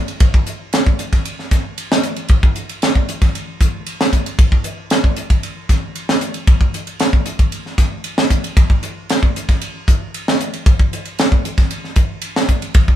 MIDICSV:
0, 0, Header, 1, 2, 480
1, 0, Start_track
1, 0, Tempo, 522648
1, 186, Time_signature, 4, 2, 24, 8
1, 11902, End_track
2, 0, Start_track
2, 0, Title_t, "Drums"
2, 73, Note_on_c, 9, 51, 59
2, 165, Note_off_c, 9, 51, 0
2, 186, Note_on_c, 9, 51, 78
2, 189, Note_on_c, 9, 36, 99
2, 278, Note_off_c, 9, 51, 0
2, 280, Note_off_c, 9, 36, 0
2, 312, Note_on_c, 9, 36, 79
2, 404, Note_off_c, 9, 36, 0
2, 427, Note_on_c, 9, 44, 74
2, 427, Note_on_c, 9, 51, 54
2, 519, Note_off_c, 9, 44, 0
2, 519, Note_off_c, 9, 51, 0
2, 668, Note_on_c, 9, 51, 81
2, 677, Note_on_c, 9, 38, 99
2, 760, Note_off_c, 9, 51, 0
2, 769, Note_off_c, 9, 38, 0
2, 794, Note_on_c, 9, 36, 73
2, 886, Note_off_c, 9, 36, 0
2, 909, Note_on_c, 9, 44, 75
2, 909, Note_on_c, 9, 51, 59
2, 1001, Note_off_c, 9, 44, 0
2, 1001, Note_off_c, 9, 51, 0
2, 1034, Note_on_c, 9, 36, 64
2, 1034, Note_on_c, 9, 51, 51
2, 1043, Note_on_c, 9, 38, 25
2, 1126, Note_off_c, 9, 36, 0
2, 1126, Note_off_c, 9, 51, 0
2, 1135, Note_off_c, 9, 38, 0
2, 1151, Note_on_c, 9, 51, 75
2, 1243, Note_off_c, 9, 51, 0
2, 1280, Note_on_c, 9, 38, 27
2, 1372, Note_off_c, 9, 38, 0
2, 1388, Note_on_c, 9, 44, 72
2, 1388, Note_on_c, 9, 51, 57
2, 1390, Note_on_c, 9, 36, 70
2, 1397, Note_on_c, 9, 38, 28
2, 1480, Note_off_c, 9, 44, 0
2, 1480, Note_off_c, 9, 51, 0
2, 1482, Note_off_c, 9, 36, 0
2, 1489, Note_off_c, 9, 38, 0
2, 1632, Note_on_c, 9, 51, 77
2, 1724, Note_off_c, 9, 51, 0
2, 1760, Note_on_c, 9, 38, 102
2, 1852, Note_off_c, 9, 38, 0
2, 1868, Note_on_c, 9, 44, 74
2, 1868, Note_on_c, 9, 51, 57
2, 1960, Note_off_c, 9, 44, 0
2, 1960, Note_off_c, 9, 51, 0
2, 1988, Note_on_c, 9, 51, 56
2, 2079, Note_off_c, 9, 51, 0
2, 2098, Note_on_c, 9, 51, 65
2, 2108, Note_on_c, 9, 36, 94
2, 2190, Note_off_c, 9, 51, 0
2, 2200, Note_off_c, 9, 36, 0
2, 2232, Note_on_c, 9, 36, 82
2, 2324, Note_off_c, 9, 36, 0
2, 2347, Note_on_c, 9, 44, 78
2, 2347, Note_on_c, 9, 51, 54
2, 2439, Note_off_c, 9, 44, 0
2, 2439, Note_off_c, 9, 51, 0
2, 2473, Note_on_c, 9, 51, 61
2, 2565, Note_off_c, 9, 51, 0
2, 2590, Note_on_c, 9, 51, 73
2, 2599, Note_on_c, 9, 38, 95
2, 2682, Note_off_c, 9, 51, 0
2, 2691, Note_off_c, 9, 38, 0
2, 2713, Note_on_c, 9, 36, 69
2, 2805, Note_off_c, 9, 36, 0
2, 2834, Note_on_c, 9, 44, 75
2, 2834, Note_on_c, 9, 51, 54
2, 2926, Note_off_c, 9, 44, 0
2, 2926, Note_off_c, 9, 51, 0
2, 2953, Note_on_c, 9, 51, 56
2, 2954, Note_on_c, 9, 36, 78
2, 2962, Note_on_c, 9, 38, 28
2, 3045, Note_off_c, 9, 51, 0
2, 3046, Note_off_c, 9, 36, 0
2, 3054, Note_off_c, 9, 38, 0
2, 3077, Note_on_c, 9, 51, 73
2, 3169, Note_off_c, 9, 51, 0
2, 3311, Note_on_c, 9, 36, 75
2, 3311, Note_on_c, 9, 44, 85
2, 3311, Note_on_c, 9, 51, 54
2, 3403, Note_off_c, 9, 36, 0
2, 3403, Note_off_c, 9, 44, 0
2, 3403, Note_off_c, 9, 51, 0
2, 3549, Note_on_c, 9, 51, 79
2, 3641, Note_off_c, 9, 51, 0
2, 3680, Note_on_c, 9, 38, 101
2, 3772, Note_off_c, 9, 38, 0
2, 3791, Note_on_c, 9, 36, 61
2, 3793, Note_on_c, 9, 44, 74
2, 3793, Note_on_c, 9, 51, 57
2, 3883, Note_off_c, 9, 36, 0
2, 3885, Note_off_c, 9, 44, 0
2, 3885, Note_off_c, 9, 51, 0
2, 3914, Note_on_c, 9, 51, 62
2, 4006, Note_off_c, 9, 51, 0
2, 4029, Note_on_c, 9, 36, 102
2, 4030, Note_on_c, 9, 51, 83
2, 4121, Note_off_c, 9, 36, 0
2, 4121, Note_off_c, 9, 51, 0
2, 4150, Note_on_c, 9, 36, 71
2, 4242, Note_off_c, 9, 36, 0
2, 4262, Note_on_c, 9, 44, 77
2, 4262, Note_on_c, 9, 51, 59
2, 4354, Note_off_c, 9, 44, 0
2, 4354, Note_off_c, 9, 51, 0
2, 4502, Note_on_c, 9, 51, 73
2, 4512, Note_on_c, 9, 38, 99
2, 4594, Note_off_c, 9, 51, 0
2, 4603, Note_off_c, 9, 38, 0
2, 4628, Note_on_c, 9, 36, 71
2, 4720, Note_off_c, 9, 36, 0
2, 4743, Note_on_c, 9, 44, 77
2, 4743, Note_on_c, 9, 51, 55
2, 4834, Note_off_c, 9, 44, 0
2, 4834, Note_off_c, 9, 51, 0
2, 4868, Note_on_c, 9, 36, 74
2, 4868, Note_on_c, 9, 51, 60
2, 4960, Note_off_c, 9, 36, 0
2, 4960, Note_off_c, 9, 51, 0
2, 4988, Note_on_c, 9, 51, 72
2, 5080, Note_off_c, 9, 51, 0
2, 5227, Note_on_c, 9, 44, 71
2, 5227, Note_on_c, 9, 51, 54
2, 5228, Note_on_c, 9, 36, 76
2, 5237, Note_on_c, 9, 38, 30
2, 5319, Note_off_c, 9, 44, 0
2, 5319, Note_off_c, 9, 51, 0
2, 5320, Note_off_c, 9, 36, 0
2, 5328, Note_off_c, 9, 38, 0
2, 5469, Note_on_c, 9, 51, 72
2, 5560, Note_off_c, 9, 51, 0
2, 5594, Note_on_c, 9, 38, 93
2, 5686, Note_off_c, 9, 38, 0
2, 5704, Note_on_c, 9, 44, 79
2, 5704, Note_on_c, 9, 51, 56
2, 5796, Note_off_c, 9, 44, 0
2, 5796, Note_off_c, 9, 51, 0
2, 5823, Note_on_c, 9, 51, 56
2, 5915, Note_off_c, 9, 51, 0
2, 5946, Note_on_c, 9, 36, 111
2, 5948, Note_on_c, 9, 51, 72
2, 6038, Note_off_c, 9, 36, 0
2, 6040, Note_off_c, 9, 51, 0
2, 6067, Note_on_c, 9, 36, 70
2, 6159, Note_off_c, 9, 36, 0
2, 6190, Note_on_c, 9, 44, 83
2, 6190, Note_on_c, 9, 51, 57
2, 6282, Note_off_c, 9, 44, 0
2, 6282, Note_off_c, 9, 51, 0
2, 6309, Note_on_c, 9, 51, 57
2, 6401, Note_off_c, 9, 51, 0
2, 6424, Note_on_c, 9, 51, 70
2, 6433, Note_on_c, 9, 38, 98
2, 6516, Note_off_c, 9, 51, 0
2, 6525, Note_off_c, 9, 38, 0
2, 6549, Note_on_c, 9, 36, 72
2, 6641, Note_off_c, 9, 36, 0
2, 6663, Note_on_c, 9, 44, 79
2, 6663, Note_on_c, 9, 51, 54
2, 6755, Note_off_c, 9, 44, 0
2, 6755, Note_off_c, 9, 51, 0
2, 6788, Note_on_c, 9, 36, 75
2, 6788, Note_on_c, 9, 51, 56
2, 6880, Note_off_c, 9, 36, 0
2, 6880, Note_off_c, 9, 51, 0
2, 6907, Note_on_c, 9, 51, 66
2, 6999, Note_off_c, 9, 51, 0
2, 7038, Note_on_c, 9, 38, 26
2, 7129, Note_off_c, 9, 38, 0
2, 7146, Note_on_c, 9, 36, 77
2, 7147, Note_on_c, 9, 44, 78
2, 7147, Note_on_c, 9, 51, 59
2, 7156, Note_on_c, 9, 38, 29
2, 7237, Note_off_c, 9, 36, 0
2, 7239, Note_off_c, 9, 44, 0
2, 7239, Note_off_c, 9, 51, 0
2, 7248, Note_off_c, 9, 38, 0
2, 7384, Note_on_c, 9, 51, 78
2, 7475, Note_off_c, 9, 51, 0
2, 7512, Note_on_c, 9, 38, 97
2, 7603, Note_off_c, 9, 38, 0
2, 7625, Note_on_c, 9, 44, 75
2, 7625, Note_on_c, 9, 51, 60
2, 7627, Note_on_c, 9, 36, 61
2, 7717, Note_off_c, 9, 44, 0
2, 7717, Note_off_c, 9, 51, 0
2, 7718, Note_off_c, 9, 36, 0
2, 7752, Note_on_c, 9, 51, 65
2, 7844, Note_off_c, 9, 51, 0
2, 7868, Note_on_c, 9, 36, 106
2, 7869, Note_on_c, 9, 51, 84
2, 7960, Note_off_c, 9, 36, 0
2, 7961, Note_off_c, 9, 51, 0
2, 7989, Note_on_c, 9, 36, 75
2, 8081, Note_off_c, 9, 36, 0
2, 8107, Note_on_c, 9, 44, 87
2, 8107, Note_on_c, 9, 51, 54
2, 8198, Note_off_c, 9, 44, 0
2, 8198, Note_off_c, 9, 51, 0
2, 8353, Note_on_c, 9, 51, 78
2, 8362, Note_on_c, 9, 38, 90
2, 8445, Note_off_c, 9, 51, 0
2, 8454, Note_off_c, 9, 38, 0
2, 8474, Note_on_c, 9, 36, 73
2, 8566, Note_off_c, 9, 36, 0
2, 8598, Note_on_c, 9, 44, 70
2, 8598, Note_on_c, 9, 51, 54
2, 8690, Note_off_c, 9, 44, 0
2, 8690, Note_off_c, 9, 51, 0
2, 8712, Note_on_c, 9, 51, 53
2, 8713, Note_on_c, 9, 36, 68
2, 8721, Note_on_c, 9, 38, 30
2, 8804, Note_off_c, 9, 51, 0
2, 8805, Note_off_c, 9, 36, 0
2, 8813, Note_off_c, 9, 38, 0
2, 8830, Note_on_c, 9, 51, 79
2, 8922, Note_off_c, 9, 51, 0
2, 9073, Note_on_c, 9, 36, 84
2, 9078, Note_on_c, 9, 44, 83
2, 9078, Note_on_c, 9, 51, 59
2, 9165, Note_off_c, 9, 36, 0
2, 9170, Note_off_c, 9, 44, 0
2, 9170, Note_off_c, 9, 51, 0
2, 9316, Note_on_c, 9, 51, 82
2, 9408, Note_off_c, 9, 51, 0
2, 9444, Note_on_c, 9, 38, 89
2, 9535, Note_off_c, 9, 38, 0
2, 9556, Note_on_c, 9, 44, 84
2, 9556, Note_on_c, 9, 51, 57
2, 9648, Note_off_c, 9, 44, 0
2, 9648, Note_off_c, 9, 51, 0
2, 9676, Note_on_c, 9, 51, 61
2, 9768, Note_off_c, 9, 51, 0
2, 9792, Note_on_c, 9, 36, 102
2, 9796, Note_on_c, 9, 51, 68
2, 9884, Note_off_c, 9, 36, 0
2, 9888, Note_off_c, 9, 51, 0
2, 9914, Note_on_c, 9, 36, 79
2, 10006, Note_off_c, 9, 36, 0
2, 10038, Note_on_c, 9, 44, 78
2, 10038, Note_on_c, 9, 51, 59
2, 10130, Note_off_c, 9, 44, 0
2, 10130, Note_off_c, 9, 51, 0
2, 10152, Note_on_c, 9, 51, 57
2, 10244, Note_off_c, 9, 51, 0
2, 10273, Note_on_c, 9, 51, 67
2, 10282, Note_on_c, 9, 38, 98
2, 10365, Note_off_c, 9, 51, 0
2, 10374, Note_off_c, 9, 38, 0
2, 10395, Note_on_c, 9, 36, 77
2, 10487, Note_off_c, 9, 36, 0
2, 10516, Note_on_c, 9, 44, 72
2, 10516, Note_on_c, 9, 51, 59
2, 10608, Note_off_c, 9, 44, 0
2, 10608, Note_off_c, 9, 51, 0
2, 10633, Note_on_c, 9, 36, 76
2, 10633, Note_on_c, 9, 51, 53
2, 10642, Note_on_c, 9, 38, 28
2, 10725, Note_off_c, 9, 36, 0
2, 10725, Note_off_c, 9, 51, 0
2, 10734, Note_off_c, 9, 38, 0
2, 10750, Note_on_c, 9, 51, 75
2, 10842, Note_off_c, 9, 51, 0
2, 10878, Note_on_c, 9, 38, 25
2, 10970, Note_off_c, 9, 38, 0
2, 10981, Note_on_c, 9, 44, 81
2, 10981, Note_on_c, 9, 51, 56
2, 10987, Note_on_c, 9, 36, 77
2, 11073, Note_off_c, 9, 44, 0
2, 11073, Note_off_c, 9, 51, 0
2, 11079, Note_off_c, 9, 36, 0
2, 11219, Note_on_c, 9, 51, 85
2, 11311, Note_off_c, 9, 51, 0
2, 11355, Note_on_c, 9, 38, 88
2, 11447, Note_off_c, 9, 38, 0
2, 11468, Note_on_c, 9, 36, 65
2, 11468, Note_on_c, 9, 44, 73
2, 11468, Note_on_c, 9, 51, 57
2, 11560, Note_off_c, 9, 36, 0
2, 11560, Note_off_c, 9, 44, 0
2, 11560, Note_off_c, 9, 51, 0
2, 11591, Note_on_c, 9, 51, 59
2, 11683, Note_off_c, 9, 51, 0
2, 11704, Note_on_c, 9, 51, 85
2, 11708, Note_on_c, 9, 36, 108
2, 11795, Note_off_c, 9, 51, 0
2, 11799, Note_off_c, 9, 36, 0
2, 11830, Note_on_c, 9, 36, 77
2, 11902, Note_off_c, 9, 36, 0
2, 11902, End_track
0, 0, End_of_file